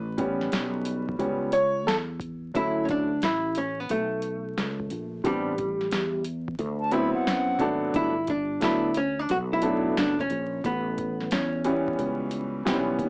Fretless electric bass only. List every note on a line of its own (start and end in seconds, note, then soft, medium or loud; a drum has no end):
0.00 0.49 A1 loud
0.52 1.17 B1 loud
1.20 1.87 C#2 medium
1.87 2.51 E2 medium
2.55 3.19 D2 loud
3.22 3.86 A1 medium
3.90 4.54 B1 medium
4.57 4.89 C#2 medium
4.91 5.23 A#1 medium
5.25 5.89 A1 loud
5.92 6.56 E2 medium
6.59 7.12 D2 loud
7.16 muted fretless electric bass stroke soft
7.27 7.59 F#2 medium
7.59 7.92 G#1 medium
7.94 8.58 G1 loud
8.62 9.26 D2 medium
9.30 9.93 B1 loud
9.97 10.29 F#1 medium
10.31 10.62 A#1 loud
10.64 11.28 A1 loud
11.32 11.96 E2 medium
11.99 12.63 C#2 loud
12.66 12.98 B1 medium
12.99 13.09 D#2 medium